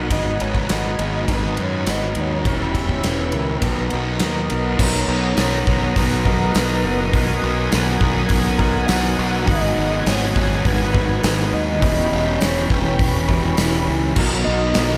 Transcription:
Already playing: B3 F#5 D#6
0.09 G#1 G#2 D#3 F#3 G#3 B3 D#4 B4 D#5 G#5, kick, ride
0.38 G#1 D#3 F#3 G#3 B3 D#4 B4 C#5, ride
0.55 kick
0.68 G#1 G#2 D#3 F#3 G#3 B3 D#4 B4 D#5, snare, ride, tambourine
0.98 G#1 D#3 F#3 G#3 B3 D#4 B4, ride
1.27 G#1 G#2 D#3 F#3 G#3 B3 D#4 B4, kick, ride
1.31 B4
1.56 F#2 D#3 F#3 G#3 B3 D#4 B4, ride
1.62 C#5
1.86 G#1 G#2 D#3 F#3 G#3 B3 D#4 B4, snare, ride, tambourine
1.90 D#5
2.14 D#2 D#3 F#3 G#3 B3 D#4 B4, ride
2.20 C#5
2.44 E1 E2 B2 E3 G3 C#4 E4 B4 C#5 G5 B5 E6, kick, ride
2.73 B2 E3 C#4 E4 B4, kick, ride
2.89 kick
3.01 E1 E2 B2 E3 G3 C#4 E4, snare, ride, tambourine
3.06 B4
3.32 C#2 B2 E3 C#4 E4 A#4 B4, ride
3.61 B1 B2 D#3 F#3 B3 D#4 A#4 B4 F#5 A#5 D#6, kick, ride
3.89 B1 F#3 B3 D#4 A#4, ride
3.94 F#3
4.20 D#2 B2 F#3 B3 D#4 A#4, snare, ride, tambourine
4.49 B1 F#3 B3 D#4 A#4, ride
4.78 B1 B2 D#3 F#3 B3 D#4 A#4 C#5 F#5 A#5, kick, crash
4.82 B3 D#6
5.08 B1
5.36 B1 B2 F#3 B3, snare, open hi-hat, tambourine
5.66 B1 F#3 B3, kick
5.94 B1 B2 F#3 B3 B4, kick, open hi-hat
6.25 B2 D#3 F#3 B3 D#4 A#4, kick
6.54 B1 B2 D#3 F#3 B3 D#4 A#4, snare, open hi-hat, tambourine
6.84 F#1
7.11 B1 B2 D#3 F#3 B3 D#4 A#4 B4 G#5, kick, open hi-hat
7.24 A#4
7.43 B1
7.71 B1 B2 F#3 B3, snare, open hi-hat, tambourine
7.99 B1 F#3 B3, kick
8.29 B1 B2 F#3 B3, kick, open hi-hat
8.59 B2 D#3 F#3 B3 D#4 A#4, kick
8.86 B1 B2 D#3 F#3 B3 F#5, snare, open hi-hat, tambourine
8.90 F#3 B3 D#4 A#4
9.19 B1
9.45 G#1 G#2 D#3 F#3 G#3 B3 D#4 B4 D#5 G#5, kick, open hi-hat
9.77 G#1
10.05 G#1 G#2 D#3 G#3 C#5, snare, open hi-hat, tambourine
10.35 G#1 D#3 G#3, kick
10.63 G#1 G#2 D#3 G#3 B4, kick, open hi-hat
10.93 G#2 D#3 F#3 B3 D#4 B4, kick
11.22 G#1 G#2 D#3 F#3 G#3 B3 D#4 B4, snare, open hi-hat, tambourine
11.52 D#2 D#5
11.80 E1 E2 B2 E3 G3 C#4 E4 B4 C#5 G5 B5, kick, open hi-hat
11.85 E3
12.12 E1
12.40 E1 E2 B2 E3 C#5, snare, open hi-hat, tambourine
12.69 E1 B2 E3 B4, kick
12.98 E1 E2 B2 E3, kick, open hi-hat
13.28 E3 G3 C#4 E4 B4, kick
13.57 E1 E2 B2 E3 G3 C#4 E4, snare, open hi-hat, tambourine
13.61 B4
13.73 snare
13.88 C#2
14.15 B1 B2 D#3 F#3 B3 D#4 A#4 F#5 A#5 D#6, kick, crash
14.44 B1 D#5
14.73 B1 B2 F#3 B3, snare, open hi-hat, tambourine

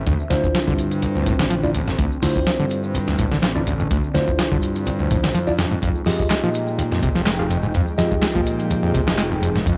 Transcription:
Already playing: D3 C4 E5
0.07 D2, kick, closed hi-hat, shaker
0.20 shaker
0.30 D2 D4 E4 F4 C5, snare, closed hi-hat, shaker
0.44 E2, kick, shaker
0.55 F3, snare, closed hi-hat, shaker
0.68 G2 D3, kick, shaker
0.79 closed hi-hat, shaker
0.91 closed hi-hat, shaker
1.02 C2, closed hi-hat, shaker
1.16 D2, shaker
1.26 A2, kick, closed hi-hat, shaker
1.39 A1 D3, snare, shaker
1.50 F3, closed hi-hat, shaker
1.63 D2 D4 E4 F4 D5, shaker
1.75 D2, closed hi-hat, shaker
1.87 F2, snare, shaker
1.99 D2 D4, kick, closed hi-hat, shaker
2.12 shaker
2.22 D2 D4 E4 F4 C5, snare, open hi-hat, shaker
2.35 E2, kick, shaker
2.46 F3, snare, closed hi-hat, shaker
2.59 G2 D3, shaker
2.70 closed hi-hat, shaker
2.84 shaker
2.94 C2, closed hi-hat, shaker
3.07 D2, snare, shaker
3.18 A2, kick, closed hi-hat, shaker
3.31 A1 D3, snare, shaker
3.42 F3, snare, closed hi-hat, shaker
3.55 D2 D4 E4 F4 D5, shaker
3.66 D2, closed hi-hat, shaker
3.79 F2, shaker
3.91 D2, kick, closed hi-hat, shaker
4.04 shaker
4.14 D2 D4 E4 F4 C5, snare, closed hi-hat, shaker
4.28 E2, kick, shaker
4.39 F3, snare, closed hi-hat, shaker
4.52 G2 D3, kick, shaker
4.62 closed hi-hat, shaker
4.75 closed hi-hat, shaker
4.86 C2, closed hi-hat, shaker
4.99 D2, shaker
5.10 F2 A2, kick, closed hi-hat, shaker
5.23 A1 D3, snare, shaker
5.34 F2 F3, closed hi-hat, shaker
5.47 D2 D4 E4 F4 D5, shaker
5.58 F2 F3 G#3 D#4 G5, snare, closed hi-hat, shaker
5.71 G#2, shaker
5.82 F2, kick, closed hi-hat, shaker
5.95 shaker
6.06 F2 F4 G4 G#4 D#5, snare, open hi-hat, shaker
6.19 G2, kick, shaker
6.30 G#3, snare, clap, closed hi-hat, shaker
6.43 A#2 F3, shaker
6.54 closed hi-hat, shaker
6.67 shaker
6.78 D#2, closed hi-hat, shaker
6.91 F2, snare, shaker
7.02 C3, kick, closed hi-hat, shaker
7.15 F1 F3, snare, shaker
7.26 G#3, snare, clap, closed hi-hat, shaker
7.39 F2 F4 G4 G#4 F5, shaker
7.50 F2, closed hi-hat, shaker
7.63 G#2, shaker
7.74 F2, kick, closed hi-hat, shaker
7.87 shaker
7.98 F2 F4 G4 G#4 D#5, snare, closed hi-hat, shaker
8.11 G2, kick, shaker
8.22 G#3, snare, clap, closed hi-hat, shaker
8.35 A#2 F3, kick, shaker
8.46 closed hi-hat, shaker
8.59 closed hi-hat, shaker
8.70 D#2, closed hi-hat, shaker
8.83 F2, shaker
8.94 C3, kick, closed hi-hat, shaker
9.07 F1 F3, snare, shaker
9.18 G#3, clap, closed hi-hat, shaker
9.31 F2, shaker
9.42 F2, closed hi-hat, shaker
9.55 G#2, snare, shaker
9.66 F2, kick, closed hi-hat, shaker

